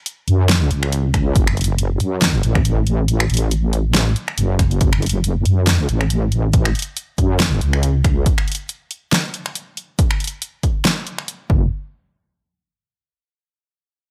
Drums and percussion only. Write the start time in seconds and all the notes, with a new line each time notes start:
0.06 closed hi-hat
0.28 closed hi-hat
0.49 snare, closed hi-hat
0.71 closed hi-hat
0.83 finger snap
0.92 closed hi-hat
1.14 finger snap, kick, closed hi-hat
1.36 kick, closed hi-hat
1.47 finger snap
1.57 closed hi-hat
1.61 closed hi-hat
1.64 closed hi-hat
1.78 closed hi-hat
2.00 closed hi-hat
2.22 snare, closed hi-hat
2.43 closed hi-hat
2.55 finger snap, kick
2.65 closed hi-hat
2.87 closed hi-hat
3.08 closed hi-hat
3.20 finger snap
3.30 closed hi-hat
3.34 closed hi-hat
3.37 closed hi-hat
3.51 closed hi-hat
3.73 closed hi-hat
3.94 snare, closed hi-hat
4.16 closed hi-hat
4.28 finger snap
4.38 closed hi-hat
4.59 finger snap, kick, closed hi-hat
4.71 closed hi-hat
4.81 kick, closed hi-hat
4.93 finger snap
5.02 closed hi-hat
5.06 closed hi-hat
5.09 closed hi-hat
5.24 closed hi-hat
5.45 closed hi-hat
5.67 snare, closed hi-hat
5.89 closed hi-hat
6.01 finger snap
6.10 closed hi-hat
6.32 closed hi-hat
6.53 kick, closed hi-hat
6.65 finger snap
6.75 closed hi-hat
6.79 closed hi-hat
6.82 closed hi-hat
6.97 closed hi-hat
7.18 kick, closed hi-hat
7.40 snare, closed hi-hat
7.61 closed hi-hat
7.73 finger snap
7.83 closed hi-hat
8.04 finger snap, kick, closed hi-hat
8.26 kick, closed hi-hat
8.38 finger snap
8.48 closed hi-hat
8.52 closed hi-hat
8.55 closed hi-hat
8.69 closed hi-hat
8.91 closed hi-hat
9.12 snare, closed hi-hat
9.34 closed hi-hat
9.46 finger snap
9.55 closed hi-hat
9.77 closed hi-hat
9.99 kick, closed hi-hat
10.11 finger snap
10.20 closed hi-hat
10.24 closed hi-hat
10.27 closed hi-hat
10.42 closed hi-hat
10.63 kick, closed hi-hat
10.85 snare, closed hi-hat
11.07 closed hi-hat
11.18 finger snap
11.28 closed hi-hat
11.50 kick